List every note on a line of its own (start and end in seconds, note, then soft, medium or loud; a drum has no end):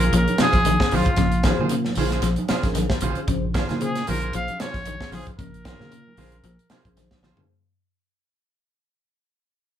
0.00 0.17 G#4 soft
0.00 0.13 A#4 medium
0.00 closed hi-hat soft
0.05 0.18 F4 soft
0.13 0.25 A#1 loud
0.13 0.35 F3 medium
0.13 0.44 C#4 medium
0.13 0.44 G#4 medium
0.13 0.39 A#4 medium
0.13 0.45 C#5 medium
0.13 closed hi-hat medium
0.28 closed hi-hat soft
0.28 high conga medium
0.38 0.61 C3 medium
0.38 0.57 C#4 medium
0.38 0.57 F4 medium
0.38 0.57 G#4 medium
0.38 0.98 G#4 loud
0.38 muted fingered electric bass stroke soft
0.38 snare medium
0.38 closed hi-hat medium
0.38 high conga medium
0.42 0.58 C5 medium
0.53 0.76 A#1 medium
0.53 kick medium
0.53 snare soft
0.53 closed hi-hat soft
0.65 0.87 D#3 medium
0.65 closed hi-hat medium
0.65 high conga medium
0.79 1.10 C#4 medium
0.79 1.10 G#4 medium
0.79 1.11 C5 medium
0.79 kick medium
0.79 snare medium
0.91 1.05 A#1 medium
0.91 1.13 F3 medium
0.91 1.09 C#4 medium
0.91 1.10 F4 medium
0.91 1.10 G#4 medium
0.91 1.10 C5 medium
0.91 open hi-hat medium
0.91 high conga medium
0.91 low conga medium
0.96 1.47 F4 medium
1.05 kick medium
1.05 closed hi-hat soft
1.16 1.52 A#1 loud
1.16 1.39 C#3 medium
1.16 kick loud
1.16 snare soft
1.16 closed hi-hat medium
1.32 closed hi-hat soft
1.43 1.66 D#3 medium
1.43 1.69 C#4 medium
1.43 1.59 C#4 medium
1.43 1.60 F4 medium
1.43 1.69 G#4 medium
1.43 1.60 G#4 medium
1.43 1.70 C5 medium
1.43 1.59 C5 medium
1.43 kick medium
1.43 snare medium
1.43 closed hi-hat soft
1.43 high conga medium
1.59 1.91 A#2 medium
1.59 1.75 F4 soft
1.59 1.75 G#4 medium
1.59 1.74 C5 medium
1.59 high conga medium
1.59 low conga medium
1.69 1.92 C#3 medium
1.69 closed hi-hat medium
1.85 snare soft
1.85 high conga medium
1.95 2.19 A#1 medium
1.95 2.19 F3 medium
1.95 2.28 C#4 medium
1.95 2.12 C#4 medium
1.95 2.12 F4 medium
1.95 2.29 G#4 medium
1.95 2.12 G#4 medium
1.95 2.29 C5 medium
1.95 2.11 C5 medium
1.95 open hi-hat medium
1.95 low conga medium
2.11 2.27 F4 soft
2.11 2.27 G#4 soft
2.11 2.27 C5 medium
2.11 snare soft
2.11 closed hi-hat soft
2.22 2.35 A#1 loud
2.22 2.44 F3 medium
2.22 snare soft
2.22 closed hi-hat medium
2.36 closed hi-hat soft
2.36 high conga medium
2.49 2.71 C3 medium
2.49 2.66 C#4 medium
2.49 2.67 F4 medium
2.49 2.67 G#4 medium
2.49 2.67 C5 medium
2.49 muted fingered electric bass stroke soft
2.49 snare medium
2.49 closed hi-hat medium
2.49 high conga medium
2.63 2.86 A#1 medium
2.63 2.89 C#4 medium
2.63 2.89 G#4 medium
2.63 2.89 A#4 medium
2.63 kick medium
2.63 snare soft
2.63 closed hi-hat soft
2.75 2.97 D#3 medium
2.75 snare soft
2.75 closed hi-hat medium
2.75 high conga medium
2.90 kick medium
2.90 snare medium
3.01 3.15 A#1 medium
3.01 3.23 F3 medium
3.01 3.19 C#4 medium
3.01 3.19 F4 medium
3.01 3.20 G#4 medium
3.01 3.20 C5 medium
3.01 closed hi-hat medium
3.01 high conga medium
3.01 low conga medium
3.15 3.46 C#4 medium
3.15 3.47 G#4 medium
3.15 3.47 C5 medium
3.15 muted fingered electric bass stroke soft
3.15 closed hi-hat soft
3.28 3.62 A#1 loud
3.28 3.50 C#3 medium
3.28 kick medium
3.28 closed hi-hat medium
3.54 3.76 D#3 medium
3.54 3.69 C#4 medium
3.54 3.69 F4 medium
3.54 3.69 G#4 medium
3.54 3.68 C5 medium
3.54 kick medium
3.54 snare medium
3.54 closed hi-hat medium
3.54 high conga loud
3.69 4.02 A#2 medium
3.69 3.85 F4 soft
3.69 3.84 G#4 soft
3.69 3.84 C5 medium
3.69 snare soft
3.69 closed hi-hat soft
3.69 high conga medium
3.69 low conga medium
3.80 4.03 C#3 medium
3.80 4.06 C#4 medium
3.80 4.06 G#4 medium
3.80 4.07 G#4 medium
3.80 4.06 C5 medium
3.80 closed hi-hat medium
3.95 snare soft
3.95 closed hi-hat soft
4.07 4.30 A#1 medium
4.07 4.30 F3 medium
4.07 4.22 C#4 medium
4.07 4.22 F4 medium
4.07 4.21 G#4 medium
4.07 4.32 A#4 loud
4.07 4.20 C5 medium
4.07 open hi-hat medium
4.07 low conga medium
4.22 4.37 F4 soft
4.22 4.37 G#4 soft
4.22 4.36 C5 medium
4.22 closed hi-hat soft
4.33 4.47 A#1 loud
4.33 4.55 F3 medium
4.33 4.64 C#4 medium
4.33 4.65 G#4 medium
4.33 4.65 C5 medium
4.33 4.62 F5 loud
4.33 closed hi-hat medium
4.48 closed hi-hat soft
4.48 high conga medium
4.60 4.81 C3 medium
4.60 4.77 C#4 medium
4.60 4.77 F4 medium
4.60 4.77 G#4 medium
4.60 4.77 C5 medium
4.60 5.13 C#5 loud
4.60 muted fingered electric bass stroke soft
4.60 snare medium
4.60 closed hi-hat medium
4.60 high conga medium
4.74 4.96 A#1 medium
4.74 kick medium
4.74 snare soft
4.74 closed hi-hat soft
4.86 5.08 D#3 medium
4.86 closed hi-hat medium
4.86 high conga medium
5.00 5.31 C#4 medium
5.00 5.31 G#4 medium
5.00 5.31 C5 medium
5.00 kick medium
5.00 snare medium
5.11 5.24 A#1 medium
5.11 5.34 F3 medium
5.11 5.29 C#4 medium
5.11 5.29 F4 medium
5.11 5.29 G#4 medium
5.11 5.25 G#4 medium
5.11 5.30 C5 medium
5.11 snare soft
5.11 open hi-hat medium
5.11 high conga medium
5.11 low conga medium
5.27 kick medium
5.27 closed hi-hat soft
5.38 5.73 A#1 loud
5.38 5.61 C#3 loud
5.38 6.93 A#4 loud
5.38 kick medium
5.38 closed hi-hat medium
5.54 closed hi-hat soft
5.65 5.87 D#3 medium
5.65 5.90 C#4 medium
5.65 5.80 F4 medium
5.65 5.90 G#4 medium
5.65 5.79 G#4 medium
5.65 5.80 C5 medium
5.65 5.91 C#5 medium
5.65 muted clean electric guitar stroke medium
5.65 kick medium
5.65 snare medium
5.65 closed hi-hat soft
5.65 high conga medium
5.80 6.12 A#2 medium
5.80 5.95 F4 soft
5.80 5.95 G#4 soft
5.80 snare soft
5.80 high conga medium
5.80 low conga medium
5.92 6.13 C#3 medium
5.92 closed hi-hat medium
6.07 high conga medium
6.17 6.40 A#1 medium
6.17 6.39 F3 medium
6.17 6.35 C#4 medium
6.17 6.49 C#4 medium
6.17 6.35 F4 medium
6.17 6.35 G#4 medium
6.17 6.49 G#4 medium
6.17 6.35 C5 medium
6.17 6.50 C5 medium
6.17 open hi-hat medium
6.17 low conga medium
6.32 closed hi-hat soft
6.44 6.56 A#1 loud
6.44 6.66 F3 medium
6.44 closed hi-hat medium
6.59 closed hi-hat soft
6.70 6.92 C3 medium
6.70 6.87 C#4 medium
6.70 6.87 F4 medium
6.70 6.88 G#4 medium
6.70 6.88 C5 medium
6.70 muted fingered electric bass stroke soft
6.70 snare medium
6.70 closed hi-hat medium
6.70 high conga loud
6.85 7.07 A#1 medium
6.85 7.09 C#4 medium
6.85 7.10 G#4 medium
6.85 7.10 C5 loud
6.85 kick medium
6.85 closed hi-hat soft
6.97 7.18 D#3 medium
6.97 snare soft
6.97 closed hi-hat medium
6.97 high conga medium
7.11 kick medium
7.11 snare medium
7.11 high conga medium
7.22 7.35 A#1 medium
7.22 7.45 F3 medium
7.22 7.40 C#4 medium
7.22 7.41 F4 medium
7.22 7.41 G#4 medium
7.22 7.41 C5 medium
7.22 snare medium
7.22 low conga medium
7.36 7.49 C#4 medium
7.36 7.49 G#4 medium
7.36 7.49 C5 medium
7.36 floor tom medium
7.36 low conga medium